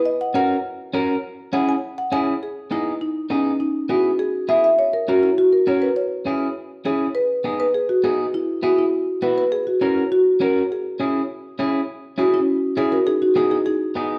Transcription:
<<
  \new Staff \with { instrumentName = "Marimba" } { \time 4/4 \key cis \dorian \tempo 4 = 203 dis''8 fis''8 fis''2. | r4 fis''8 gis''4 fis''8 gis''4 | gis'4 e'4 dis'4 cis'4 | dis'4 fis'4 gis'4 e''8 e''8 |
cis''8 ais'8 fis'8 e'8 fis'8 ais'8 cis''8 b'8 | cis''4. r4. gis'4 | b'4. b'8 gis'8 fis'8 gis'4 | e'4 fis'8 e'4. b'8 b'8 |
gis'8 fis'8 e'4 fis'4 ais'4 | gis'2. r4 | r4 <cis' fis'>8 <cis' e'>4. <e' gis'>8 <fis' ais'>8 | <dis' gis'>8 <dis' fis'>8 <dis' gis'>8 <e' gis'>8 <dis' gis'>4. r8 | }
  \new Staff \with { instrumentName = "Clean electric guitar" } { \time 4/4 \key cis \dorian r4 <cis' fis' ais'>8 r4. <cis' fis' ais'>8 r8 | r4 <cis' e' gis'>8 r4. <cis' e' gis'>8 r8 | r4 <b dis' gis'>8 r4. <b dis' gis'>8 r8 | r4 <b e' gis'>8 r4. <b e' gis'>8 r8 |
r4 <cis' fis' ais'>8 r4. <cis' fis' ais'>8 r8 | r4 <cis' e' gis'>8 r4. <cis' e' gis'>8 r8 | r4 <b dis' gis'>8 r4. <b dis' gis'>8 r8 | r4 <b e' gis'>8 r4. <b e' fis'>8 r8 |
r4 <cis' fis' ais'>8 r4. <cis' fis' ais'>8 r8 | r4 <cis' e' gis'>8 r4. <cis' e' gis'>8 r8 | r4 <cis' e' gis'>8 r4. <cis' e' gis'>8 r8 | r4 <b dis' gis'>8 r4. <b dis' gis'>8 r8 | }
>>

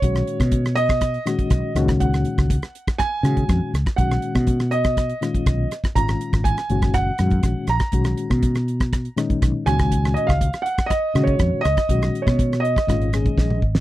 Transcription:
<<
  \new Staff \with { instrumentName = "Grand piano" } { \time 4/4 \key b \lydian \tempo 4 = 121 cis''4. dis''2 r8 | fis''2 gis''4. r8 | fis''4. dis''2 r8 | ais''4 gis''4 fis''4. ais''8~ |
ais''2~ ais''8 r4 gis''8~ | gis''8 dis''16 eis''8. fis''8 dis''8. cis''8. dis''8~ | dis''8. cis''8. dis''2 r8 | }
  \new Staff \with { instrumentName = "Reed electric piano" } { \clef bass \time 4/4 \key b \lydian <ais, dis gis cis' fis'>4~ <ais, dis gis cis' fis'>16 r4 r16 <ais, dis gis cis' fis'>4 <ais, dis gis cis' fis'>8~ | <ais, dis gis cis' fis'>4 r4. <ais, dis gis cis' fis'>4 r8 | <ais, dis gis cis' fis'>4~ <ais, dis gis cis' fis'>16 r4 r16 <ais, dis gis cis' eis'>4 r8 | <ais, dis gis cis' eis'>4~ <ais, dis gis cis' eis'>16 r16 <ais, dis gis cis' fis'>4 <ais, dis gis cis' fis'>4 r8 |
<ais, dis gis cis' fis'>4~ <ais, dis gis cis' fis'>16 r4 r16 <ais, dis gis cis' dis'>4 <ais, dis gis cis' fis'>8~ | <ais, dis gis cis' fis'>4 r4. <ais, dis gis cis' fis'>4 r8 | <ais, dis gis cis' fis'>4~ <ais, dis gis cis' fis'>16 r8. <ais, dis gis cis' eis'>8 <ais, dis gis cis' gis'>4 r8 | }
  \new Staff \with { instrumentName = "Fretless electric bass" } { \clef bass \time 4/4 \key b \lydian b,,8 r16 b,2 r16 b,,16 r16 cis,8~ | cis,8. cis,8 r4 r16 cis8 eis,16 r16 cis,16 r16 | b,,8 r16 b,2 r16 b,,8 r8 | gis,,8 r16 gis,,8 r16 fis,,4 fis,8 ais,,16 r16 ais,,16 r16 |
b,,8 r16 b,2 r16 b,,16 r16 cis,8~ | cis,8. cis,8 r4 r16 cis8 eis,16 r16 cis,16 r16 | b,,8 r16 b,4~ b,16 gis,,4 ais,,8 gis,,8 | }
  \new DrumStaff \with { instrumentName = "Drums" } \drummode { \time 4/4 <hh bd>16 <hh ss>16 hh16 <hh bd ss>16 <hh bd>16 <hh ss>16 hh16 <hh bd ss>16 <hh bd ss>16 hh16 <hh ss>16 <hh bd>16 <hh bd ss>8 <hh ss>16 <hh bd ss>16 | <hh bd>16 <hh ss>16 hh16 <hh bd ss>16 <hh bd>16 <hh ss>16 hh16 <hh bd ss>16 <hh bd ss>8 <hh ss>16 <hh bd>16 <hh bd ss>8 <hh ss>16 <hh bd ss>16 | <hh bd>16 <hh ss>16 hh16 <hh bd ss>16 <hh bd>16 <hh ss>16 hh16 <hh bd ss>16 <hh bd ss>16 hh16 <hh ss>16 <hh bd>16 <hh bd ss>8 <hh ss>16 <hh bd ss>16 | <hh bd>16 <hh ss>16 hh16 <hh bd ss>16 <hh bd>16 <hh ss>16 hh16 <hh bd ss>16 <hh bd ss>8 <hh ss>16 <hh bd>16 <hh bd ss>8 <hh ss>16 <hh bd ss>16 |
<hh bd>16 <hh ss>16 hh16 <hh bd ss>16 <hh bd>16 <hh ss>16 hh16 <hh bd ss>16 <hh bd ss>16 hh16 <hh ss>16 <hh bd>16 <hh bd ss>8 <hh ss>16 <hh bd ss>16 | <hh bd>16 <hh ss>16 hh16 <hh bd ss>16 <hh bd>16 <hh ss>16 hh16 <hh bd ss>16 <hh bd ss>8 <hh ss>16 <hh bd>16 <hh bd ss>8 <hh ss>16 <hh bd ss>16 | <hh bd>16 <hh ss>16 hh16 <hh bd ss>16 <hh bd>16 <hh ss>16 hh16 <hh bd ss>16 <hh bd ss>16 hh16 <hh ss>16 <hh bd>16 <bd sn>16 toml16 bd16 sn16 | }
>>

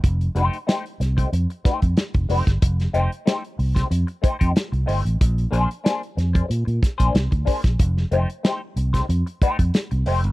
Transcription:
<<
  \new Staff \with { instrumentName = "Clean electric guitar" } { \time 4/4 \key f \mixolydian \tempo 4 = 93 r8 <a ees' g' c''>16 r16 <a ees' g' c''>16 r8 <a ees' g' c''>16 r8 <a ees' g' c''>16 r8. <a ees' g' c''>16 r16 | r8 <a ees' g' c''>16 r16 <a ees' g' c''>16 r8 <a ees' g' c''>16 r8 <a ees' g' c''>16 <a ees' g' c''>16 r8 <a ees' g' c''>16 r16 | r8 <bes d' aes' c''>16 r16 <bes d' aes' c''>16 r8 <bes d' aes' c''>16 r8. <bes d' aes' c''>16 r8 <bes d' aes' c''>16 r16 | r8 <a ees' g' c''>16 r16 <a ees' g' c''>16 r8 <a ees' g' c''>16 r8 <a ees' g' c''>16 r8. <a ees' g' c''>16 r16 | }
  \new Staff \with { instrumentName = "Fingered electric bass" } { \clef bass \time 4/4 \key f \mixolydian f,,8 f,,16 r8. c,8 f,16 r8 f,16 r16 f,,16 f,,16 g,,16 | f,,8 f,,16 r8. c,8 f,16 r8 f,16 r16 c,16 g,,16 a,,16 | bes,,8 bes,,16 r8. f,8 bes,16 bes,16 r16 bes,,16 c,16 d,16 r16 bes,,16 | f,,8 f,,16 r8. c,8 f,16 r8 f,16 r16 c,16 f,,16 g,,16 | }
  \new DrumStaff \with { instrumentName = "Drums" } \drummode { \time 4/4 <hh bd>16 hh16 hh16 hh16 <hh sn>16 hh16 <hh sn>16 <hh bd>16 hh16 hh16 <hh bd sn>16 <hh bd>16 <hh sn>16 <hh bd>16 hho16 <hh bd sn>16 | <hh bd>16 <hh sn>16 hh16 hh16 <hh sn>16 hh16 hho16 <hh bd sn>16 hh16 hh16 <hh bd>16 <hh bd>16 <hh sn>16 hh16 hho16 hh16 | <hh bd>16 hh16 hh16 hh16 <hh sn>16 hh16 <hh sn>16 <hh bd>16 hh16 hh16 <hh bd sn>16 <hh bd>16 <hh sn>16 <hh bd>16 <hho bd>16 <hh bd sn>16 | <hh bd>16 sn16 hh16 hh16 <hh sn>8 hh16 <hh bd sn>16 hh16 hh16 <hh bd>16 <hh bd>16 <hh sn>16 hh16 hho16 hh16 | }
>>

